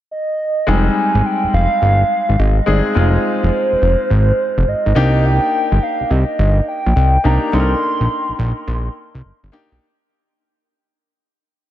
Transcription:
0.11 soft synth lead D#5
0.67 analog synth bass F1, grand piano G3 G#3 C4 D#4, soft synth lead G#5
1.15 analog synth bass G#1
1.26 soft synth lead G5
1.43 analog synth bass F1
1.53 analog synth bass F1, soft synth lead F5
1.82 analog synth bass G1
2.29 analog synth bass G#1
2.39 analog synth bass G#1, soft synth lead D#5
2.66 analog synth bass G1, grand piano G#3 C4 D#4 G#4, soft synth lead D5
2.95 analog synth bass F1, grand piano G#3 C4 D#4 F4, soft synth lead C5
3.43 analog synth bass F1
3.72 analog synth bass F1
3.82 analog synth bass F1
4.10 analog synth bass G#1
4.57 analog synth bass F1
4.67 analog synth bass G#1, soft synth lead D#5
4.86 analog synth bass G#1
4.95 analog synth bass C2, grand piano A#3 D4 D#4 G4
5.26 soft synth lead G5
5.72 analog synth bass G1
5.83 soft synth lead F5
6.00 analog synth bass C2
6.10 analog synth bass C2, soft synth lead D#5
6.39 analog synth bass G1
6.68 soft synth lead G5
6.86 analog synth bass A#1
6.96 analog synth bass C2
7.24 analog synth bass C2, grand piano A#3 D4 D#4 G4, soft synth lead A#5
7.52 analog synth bass C2, grand piano A#3 D4 D#4 A4, soft synth lead C6
7.60 grand piano A#4
8.00 analog synth bass A#1
8.29 analog synth bass A#1
8.39 analog synth bass A#1
8.68 analog synth bass A#1
9.15 analog synth bass C2
9.25 analog synth bass G1
9.43 analog synth bass G1
9.52 grand piano A#3 D4 D#4 G4
9.72 analog synth bass B1

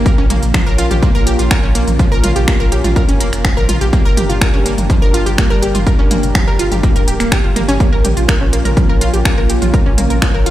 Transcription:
0.06 analog synth pad A#3 C#4 F4, synth arpeggio sound A#4, kick, closed hi-hat
0.18 analog synth bass A#1, synth arpeggio sound C#4
0.30 analog synth bass A#1, synth arpeggio sound A#3, closed hi-hat, mid tom
0.42 analog synth bass A#1, closed hi-hat
0.54 synth arpeggio sound F3, finger snap, kick, closed hi-hat
0.67 analog synth bass A#1, synth arpeggio sound A#4
0.78 analog synth bass A#1, synth arpeggio sound F4, closed hi-hat
0.91 analog synth bass A#1, synth arpeggio sound G4, closed hi-hat, mid tom
1.03 synth arpeggio sound A#3, kick, closed hi-hat
1.15 analog synth bass A#1, synth arpeggio sound A#4
1.27 analog synth bass A#1, synth arpeggio sound G4, closed hi-hat
1.39 analog synth bass A#1, synth arpeggio sound F4, closed hi-hat
1.51 synth arpeggio sound A#4, finger snap, kick, closed hi-hat
1.63 analog synth bass A#1, synth arpeggio sound C#4
1.75 analog synth bass A#1, synth arpeggio sound A#3, closed hi-hat
1.88 analog synth bass A#1, closed hi-hat, mid tom
1.99 synth arpeggio sound F3, kick, closed hi-hat
2.12 analog synth bass A#1, synth arpeggio sound A#4
2.24 analog synth bass A#1, synth arpeggio sound F4, closed hi-hat, mid tom
2.36 analog synth bass A#1, synth arpeggio sound G4, closed hi-hat
2.48 synth arpeggio sound A#3, finger snap, kick, closed hi-hat
2.60 analog synth bass A#1, synth arpeggio sound A#4
2.72 analog synth bass A#1, synth arpeggio sound G4, closed hi-hat
2.84 analog synth bass A#1, synth arpeggio sound F4, closed hi-hat, mid tom
2.96 synth arpeggio sound A#4, kick, closed hi-hat
3.09 analog synth bass F1, synth arpeggio sound C#4, closed hi-hat
3.20 analog synth bass F1, synth arpeggio sound A#3, closed hi-hat
3.33 analog synth bass F1, finger snap, closed hi-hat
3.45 synth arpeggio sound F3, finger snap, kick, closed hi-hat
3.57 analog synth bass A#1, synth arpeggio sound A#4
3.69 analog synth bass A#1, synth arpeggio sound F4, closed hi-hat, mid tom
3.81 analog synth bass A#1, synth arpeggio sound G4, closed hi-hat
3.93 analog synth pad G3 D4 G4 A#4, synth arpeggio sound A#3, kick, closed hi-hat
4.05 analog synth bass G1, synth arpeggio sound A#4
4.17 analog synth bass G1, synth arpeggio sound G4, closed hi-hat, mid tom
4.29 analog synth bass G1, synth arpeggio sound F4, closed hi-hat
4.41 synth arpeggio sound A#4, finger snap, kick, closed hi-hat
4.54 analog synth bass G1, synth arpeggio sound C#4
4.66 analog synth bass G1, synth arpeggio sound A#3, closed hi-hat
4.78 analog synth bass G1, closed hi-hat, mid tom
4.90 synth arpeggio sound F3, kick, closed hi-hat
5.02 analog synth bass G1, synth arpeggio sound A#4
5.14 analog synth bass G1, synth arpeggio sound F4, closed hi-hat
5.26 analog synth bass G1, synth arpeggio sound G4, closed hi-hat
5.38 synth arpeggio sound A#3, finger snap, kick, closed hi-hat
5.50 analog synth bass G1, synth arpeggio sound A#4
5.62 analog synth bass G1, synth arpeggio sound G4, closed hi-hat
5.75 analog synth bass G1, synth arpeggio sound F4, closed hi-hat, mid tom
5.87 synth arpeggio sound A#4, kick, closed hi-hat
5.99 analog synth bass G1, synth arpeggio sound C#4
6.11 analog synth bass G1, synth arpeggio sound A#3, closed hi-hat, mid tom
6.23 analog synth bass G1, closed hi-hat
6.35 synth arpeggio sound F3, finger snap, kick, closed hi-hat
6.48 analog synth bass G1, synth arpeggio sound A#4
6.59 analog synth bass G1, synth arpeggio sound F4, closed hi-hat
6.72 analog synth bass G1, synth arpeggio sound G4, closed hi-hat, mid tom
6.83 synth arpeggio sound A#3, kick, closed hi-hat
6.96 analog synth bass D1, synth arpeggio sound A#4, closed hi-hat
7.08 analog synth bass D1, synth arpeggio sound G4, closed hi-hat
7.20 analog synth bass D1, synth arpeggio sound A#3, finger snap, closed hi-hat
7.32 synth arpeggio sound G4, finger snap, kick, closed hi-hat
7.44 analog synth bass G1, synth arpeggio sound F4
7.56 analog synth bass G1, synth arpeggio sound A#3, closed hi-hat, mid tom
7.68 analog synth bass G1, synth arpeggio sound C#4, closed hi-hat
7.80 analog synth pad A#3 C#4 F4, synth arpeggio sound A#3, kick, closed hi-hat
7.93 analog synth bass A#1, synth arpeggio sound A#4
8.04 analog synth bass A#1, synth arpeggio sound G4, closed hi-hat, mid tom
8.17 analog synth bass A#1, synth arpeggio sound F4, closed hi-hat
8.29 synth arpeggio sound A#4, finger snap, kick, closed hi-hat
8.41 analog synth bass A#1, synth arpeggio sound C#4
8.53 analog synth bass A#1, synth arpeggio sound A#3, closed hi-hat
8.65 analog synth bass A#1, synth arpeggio sound A#4, closed hi-hat, mid tom
8.77 synth arpeggio sound F3, kick, closed hi-hat
8.89 analog synth bass A#1, synth arpeggio sound A#4
9.01 analog synth bass A#1, synth arpeggio sound F4, closed hi-hat
9.13 analog synth bass A#1, synth arpeggio sound G4, closed hi-hat
9.25 synth arpeggio sound A#3, finger snap, kick, closed hi-hat
9.38 analog synth bass A#1, synth arpeggio sound A#4
9.50 analog synth bass A#1, synth arpeggio sound G4, closed hi-hat
9.62 analog synth bass A#1, synth arpeggio sound F4, closed hi-hat, mid tom
9.74 synth arpeggio sound A#4, kick, closed hi-hat
9.86 analog synth bass A#1, synth arpeggio sound C#4
9.98 analog synth bass A#1, synth arpeggio sound A#3, closed hi-hat, mid tom
10.10 analog synth bass A#1, synth arpeggio sound A#4, closed hi-hat
10.22 synth arpeggio sound F3, finger snap, kick, closed hi-hat
10.34 analog synth bass A#1, synth arpeggio sound A#4
10.46 analog synth bass A#1, synth arpeggio sound F4, closed hi-hat

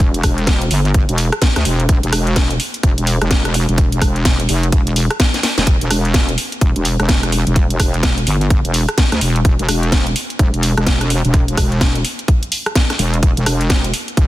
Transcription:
Already playing: wobble bass E1
0.00 kick, closed hi-hat
0.14 closed hi-hat
0.23 wobble bass E1, kick, cross-stick, open hi-hat
0.38 closed hi-hat
0.47 kick, snare, closed hi-hat
0.62 closed hi-hat
0.71 wobble bass G1, open hi-hat
0.85 closed hi-hat
0.94 kick, closed hi-hat
1.09 wobble bass E1, closed hi-hat
1.18 open hi-hat
1.32 cross-stick, closed hi-hat
1.42 kick, snare, closed hi-hat
1.56 wobble bass D2, cross-stick, snare, closed hi-hat
1.65 wobble bass E1, open hi-hat
1.80 closed hi-hat
1.89 kick, closed hi-hat
2.03 wobble bass E1, closed hi-hat
2.12 wobble bass E1, cross-stick, open hi-hat
2.27 closed hi-hat
2.36 kick, snare, closed hi-hat
2.51 closed hi-hat
2.60 open hi-hat
2.74 closed hi-hat
2.83 wobble bass E1, kick, closed hi-hat
2.98 wobble bass E1, closed hi-hat
3.07 open hi-hat
3.21 wobble bass E1, cross-stick, closed hi-hat
3.31 kick, snare, closed hi-hat
3.45 cross-stick, closed hi-hat
3.54 open hi-hat
3.69 wobble bass E1, closed hi-hat
3.78 kick, closed hi-hat
3.92 closed hi-hat
4.02 wobble bass E1, kick, cross-stick, open hi-hat
4.16 closed hi-hat
4.25 kick, snare, closed hi-hat
4.40 closed hi-hat
4.49 wobble bass F1, open hi-hat
4.63 closed hi-hat
4.72 kick, closed hi-hat
4.87 closed hi-hat
4.96 open hi-hat
5.11 cross-stick, closed hi-hat
5.20 kick, snare, closed hi-hat
5.34 snare, closed hi-hat
5.43 snare, open hi-hat
5.58 wobble bass E1, snare, closed hi-hat
5.67 wobble bass E1, kick, closed hi-hat
5.81 wobble bass E1, closed hi-hat
5.91 wobble bass E1, cross-stick, open hi-hat
6.05 closed hi-hat
6.14 kick, snare, closed hi-hat
6.29 closed hi-hat
6.38 open hi-hat
6.52 closed hi-hat
6.61 wobble bass E1, kick, closed hi-hat
6.76 wobble bass E1, closed hi-hat
6.85 open hi-hat
7.00 wobble bass E1, cross-stick, closed hi-hat
7.09 kick, snare, closed hi-hat
7.23 cross-stick, closed hi-hat
7.32 open hi-hat
7.47 wobble bass E1, closed hi-hat
7.56 kick, closed hi-hat
7.70 closed hi-hat
7.79 wobble bass E1, kick, cross-stick, open hi-hat
7.94 closed hi-hat
8.03 kick, snare, closed hi-hat
8.18 closed hi-hat
8.27 wobble bass G1, open hi-hat
8.41 closed hi-hat
8.50 kick, closed hi-hat
8.65 wobble bass E1, closed hi-hat
8.74 open hi-hat
8.89 cross-stick, closed hi-hat
8.98 kick, snare, closed hi-hat
9.12 wobble bass D2, cross-stick, snare, closed hi-hat
9.21 wobble bass E1, open hi-hat
9.36 closed hi-hat
9.45 wobble bass E1, kick, closed hi-hat
9.59 wobble bass E1, closed hi-hat
9.68 wobble bass E1, cross-stick, open hi-hat
9.83 closed hi-hat
9.92 kick, snare, closed hi-hat
10.07 closed hi-hat
10.16 open hi-hat
10.30 closed hi-hat
10.39 wobble bass E1, kick, closed hi-hat
10.54 wobble bass E1, closed hi-hat
10.63 open hi-hat
10.77 wobble bass E1, cross-stick, closed hi-hat
10.87 kick, snare, closed hi-hat
11.01 cross-stick, closed hi-hat
11.10 open hi-hat
11.25 wobble bass E1, closed hi-hat
11.34 kick, closed hi-hat
11.48 closed hi-hat
11.57 wobble bass E1, kick, cross-stick, open hi-hat
11.72 closed hi-hat
11.81 kick, snare, closed hi-hat
11.95 closed hi-hat
12.05 open hi-hat
12.19 closed hi-hat
12.28 kick, closed hi-hat
12.43 closed hi-hat
12.52 open hi-hat
12.66 cross-stick, closed hi-hat
12.75 kick, snare, closed hi-hat
12.90 cross-stick, snare, closed hi-hat
12.99 wobble bass E1, open hi-hat
13.14 closed hi-hat
13.23 wobble bass E1, kick, closed hi-hat
13.37 wobble bass E1, closed hi-hat
13.46 wobble bass E1, cross-stick, open hi-hat
13.61 closed hi-hat
13.70 kick, snare, closed hi-hat
13.84 closed hi-hat
13.94 open hi-hat
14.08 closed hi-hat
14.17 wobble bass E1, kick, closed hi-hat

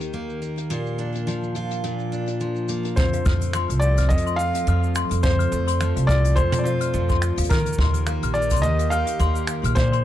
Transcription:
Already playing: ambient pad D#2 D#3 G4 A#4, steel-string acoustic guitar D#3 A#3 D#4 G4
0.01 closed hi-hat, shaker
0.13 steel-string acoustic guitar A#3, shaker
0.30 shaker
0.42 steel-string acoustic guitar A#3, shaker
0.57 closed hi-hat, shaker
0.70 ambient pad A#2 F3 D4, steel-string acoustic guitar A#2 F4, closed hi-hat, shaker
0.87 shaker
0.99 steel-string acoustic guitar D4, shaker
1.15 closed hi-hat, shaker
1.27 steel-string acoustic guitar F3, closed hi-hat, shaker
1.44 shaker
1.55 steel-string acoustic guitar F4, closed hi-hat, shaker
1.71 closed hi-hat, shaker
1.84 steel-string acoustic guitar A#2, closed hi-hat, shaker
2.00 shaker
2.12 steel-string acoustic guitar D4, shaker
2.27 closed hi-hat, shaker
2.40 steel-string acoustic guitar F3, shaker
2.56 shaker
2.68 steel-string acoustic guitar A#3, closed hi-hat, shaker
2.85 closed hi-hat, shaker
2.96 steel-string acoustic guitar F2, ambient pad F3 F4 A4 C5, felt piano C5, kick, shaker
3.13 toy piano F5, closed hi-hat, shaker
3.26 upright bass F2, steel-string acoustic guitar A3, toy piano F6, kick, shaker
3.41 closed hi-hat, shaker
3.53 steel-string acoustic guitar F3, toy piano C6, finger snap, shaker
3.69 upright bass C2, closed hi-hat, shaker
3.79 steel-string acoustic guitar C4, felt piano D5, toy piano F5, shaker
3.97 toy piano F6, kick, closed hi-hat, shaker
4.09 steel-string acoustic guitar F2, upright bass F2, felt piano D#5, shaker
4.18 closed hi-hat
4.26 toy piano C6, shaker
4.36 steel-string acoustic guitar F4, felt piano F5, shaker
4.55 toy piano F5, closed hi-hat, shaker
4.67 upright bass F2, steel-string acoustic guitar F3, toy piano F6, shaker
4.84 shaker
4.95 toy piano C6, finger snap, shaker
5.11 upright bass F2, closed hi-hat, shaker
5.23 steel-string acoustic guitar F2, felt piano C5, ambient pad D5, toy piano F5, kick, shaker
5.39 toy piano F6, closed hi-hat, shaker
5.52 upright bass F2, steel-string acoustic guitar A3, shaker
5.67 toy piano C6, closed hi-hat, shaker
5.80 steel-string acoustic guitar F3, finger snap, shaker
5.96 upright bass C2, toy piano F5, closed hi-hat, shaker
6.07 steel-string acoustic guitar C4, felt piano D5, toy piano F6, kick, shaker
6.25 closed hi-hat, shaker
6.36 steel-string acoustic guitar F2, upright bass F2, felt piano C5, toy piano C6, shaker
6.52 closed hi-hat, mid tom, shaker
6.59 felt piano D5
6.64 steel-string acoustic guitar F4, felt piano C5, toy piano F5, shaker
6.81 toy piano F6, closed hi-hat, shaker
6.94 upright bass F2, steel-string acoustic guitar F3, shaker
7.09 toy piano C6, kick, shaker
7.22 finger snap, shaker
7.37 upright bass D#2, toy piano F5, closed hi-hat, shaker
7.44 closed hi-hat, shaker
7.49 ambient pad D#3 D#4 G4 A#4, steel-string acoustic guitar D#3, felt piano A#4, toy piano F6, kick, shaker
7.58 closed hi-hat, shaker
7.66 closed hi-hat, shaker
7.73 shaker
7.78 upright bass D#2, steel-string acoustic guitar A#3, toy piano C6, kick
7.94 closed hi-hat, shaker
8.07 steel-string acoustic guitar A#3, toy piano F5, finger snap, shaker
8.23 upright bass A#1, toy piano F6, closed hi-hat, shaker
8.34 steel-string acoustic guitar D#4, felt piano D5, shaker
8.42 shaker
8.50 toy piano C6, kick, closed hi-hat, shaker
8.56 shaker
8.62 upright bass D#2, steel-string acoustic guitar D#3, felt piano D#5, shaker
8.79 toy piano F5, closed hi-hat, shaker
8.90 steel-string acoustic guitar G4, felt piano F5, toy piano F6, shaker
9.07 closed hi-hat, shaker
9.19 upright bass D#2, steel-string acoustic guitar A#3, toy piano C6, shaker
9.36 shaker
9.47 toy piano F5, finger snap, shaker
9.63 upright bass A#1, toy piano F6, closed hi-hat, shaker
9.75 steel-string acoustic guitar A#2, ambient pad D4 F4 A#4, felt piano C5, kick, shaker
9.92 toy piano C6, closed hi-hat

